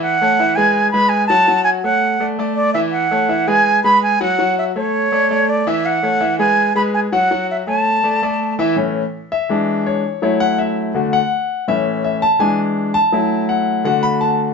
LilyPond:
<<
  \new Staff \with { instrumentName = "Flute" } { \time 4/4 \key a \major \tempo 4 = 165 fis''4. gis''4 b''8 gis''8 a''8~ | a''8 gis''8 fis''4~ fis''16 r8. d''8 e''8 | fis''4. gis''4 b''8 gis''8 fis''8~ | fis''8 e''8 cis''2 d''8 e''8 |
fis''4. gis''4 b''8 gis''8 fis''8~ | fis''8 e''8 a''2~ a''8 r8 | r1 | r1 |
r1 | r1 | }
  \new Staff \with { instrumentName = "Grand piano" } { \time 4/4 \key a \major <e e' e''>8 <a a' cis''>8 <e e' e''>8 <gis gis' b'>4 <gis gis' b'>4 <fis fis' fis''>8 | <fis fis' fis''>4 <a a' cis''>4 <a a' d''>8 <a a' d''>4 <e e' e''>8~ | <e e' e''>8 <a a' cis''>8 <e e' e''>8 <gis gis' b'>4 <gis gis' b'>4 <fis fis' fis''>8 | <fis fis' fis''>4 <a a' cis''>4 <a a' d''>8 <a a' d''>4 <e e' e''>8~ |
<e e' e''>8 <a a' cis''>8 <e e' e''>8 <gis gis' b'>4 <gis gis' b'>4 <fis fis' fis''>8 | <fis fis' fis''>4 <a a' cis''>4 <a a' d''>8 <a a' d''>4 <e e' e''>8 | r4. e''4. cis''4 | cis''8 fis''8 e''8 r4 fis''4. |
e''4 e''8 a''8 gis''8 r4 a''8~ | a''4 fis''4 fis''8 b''8 a''8 r8 | }
  \new Staff \with { instrumentName = "Grand piano" } { \clef bass \time 4/4 \key a \major r1 | r1 | r1 | r1 |
r1 | r1 | <a, e cis'>8 r4. <e gis d'>4. r8 | <fis a e'>2 <d a fis'>8 r4. |
<a, e cis'>4. r8 <e gis d'>4. r8 | <fis a e'>2 <d a fis'>2 | }
>>